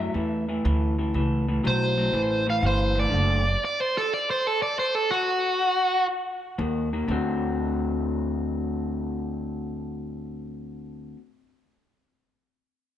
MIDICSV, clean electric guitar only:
0, 0, Header, 1, 2, 480
1, 0, Start_track
1, 0, Tempo, 494641
1, 1106, Time_signature, 4, 2, 24, 8
1, 12591, End_track
2, 0, Start_track
2, 0, Title_t, "Clean electric guitar"
2, 0, Program_c, 0, 27
2, 0, Note_on_c, 0, 45, 68
2, 0, Note_on_c, 0, 54, 77
2, 128, Note_off_c, 0, 45, 0
2, 134, Note_off_c, 0, 54, 0
2, 139, Note_on_c, 0, 45, 86
2, 146, Note_on_c, 0, 52, 101
2, 435, Note_off_c, 0, 45, 0
2, 439, Note_off_c, 0, 52, 0
2, 472, Note_on_c, 0, 45, 77
2, 474, Note_on_c, 0, 52, 74
2, 611, Note_off_c, 0, 45, 0
2, 612, Note_off_c, 0, 52, 0
2, 628, Note_on_c, 0, 45, 79
2, 632, Note_on_c, 0, 52, 93
2, 920, Note_off_c, 0, 45, 0
2, 922, Note_off_c, 0, 52, 0
2, 956, Note_on_c, 0, 45, 65
2, 961, Note_on_c, 0, 52, 74
2, 1093, Note_off_c, 0, 45, 0
2, 1096, Note_off_c, 0, 52, 0
2, 1111, Note_on_c, 0, 45, 81
2, 1118, Note_on_c, 0, 52, 95
2, 1402, Note_off_c, 0, 45, 0
2, 1405, Note_off_c, 0, 52, 0
2, 1441, Note_on_c, 0, 45, 73
2, 1443, Note_on_c, 0, 52, 79
2, 1576, Note_off_c, 0, 45, 0
2, 1577, Note_off_c, 0, 52, 0
2, 1587, Note_on_c, 0, 45, 83
2, 1593, Note_on_c, 0, 54, 96
2, 1880, Note_off_c, 0, 45, 0
2, 1883, Note_off_c, 0, 54, 0
2, 1918, Note_on_c, 0, 45, 74
2, 1921, Note_on_c, 0, 54, 70
2, 2055, Note_off_c, 0, 45, 0
2, 2057, Note_off_c, 0, 54, 0
2, 2066, Note_on_c, 0, 45, 95
2, 2071, Note_on_c, 0, 52, 102
2, 2360, Note_off_c, 0, 45, 0
2, 2362, Note_off_c, 0, 52, 0
2, 2393, Note_on_c, 0, 45, 70
2, 2395, Note_on_c, 0, 52, 82
2, 2533, Note_off_c, 0, 45, 0
2, 2533, Note_off_c, 0, 52, 0
2, 2550, Note_on_c, 0, 45, 83
2, 2556, Note_on_c, 0, 52, 101
2, 2842, Note_off_c, 0, 45, 0
2, 2845, Note_off_c, 0, 52, 0
2, 2866, Note_on_c, 0, 45, 74
2, 2875, Note_on_c, 0, 52, 83
2, 3005, Note_off_c, 0, 45, 0
2, 3009, Note_on_c, 0, 50, 85
2, 3013, Note_off_c, 0, 52, 0
2, 3017, Note_on_c, 0, 57, 85
2, 3311, Note_off_c, 0, 50, 0
2, 3316, Note_off_c, 0, 57, 0
2, 6390, Note_on_c, 0, 51, 93
2, 6390, Note_on_c, 0, 58, 96
2, 6681, Note_off_c, 0, 51, 0
2, 6681, Note_off_c, 0, 58, 0
2, 6726, Note_on_c, 0, 51, 79
2, 6728, Note_on_c, 0, 58, 84
2, 6858, Note_off_c, 0, 51, 0
2, 6859, Note_off_c, 0, 58, 0
2, 6869, Note_on_c, 0, 50, 88
2, 6879, Note_on_c, 0, 57, 99
2, 6897, Note_on_c, 0, 60, 113
2, 6907, Note_on_c, 0, 66, 107
2, 10832, Note_off_c, 0, 50, 0
2, 10842, Note_off_c, 0, 57, 0
2, 10859, Note_off_c, 0, 60, 0
2, 10870, Note_off_c, 0, 66, 0
2, 12591, End_track
0, 0, End_of_file